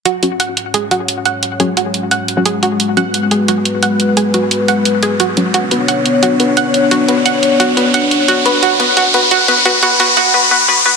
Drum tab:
HH |xxxxxxxx|xxxxxxxx|xxxxxxxx|xxxxxxxx|

HH |xxxxxxxx|xxxxxxxx|xxxxxxxx|xxxx----|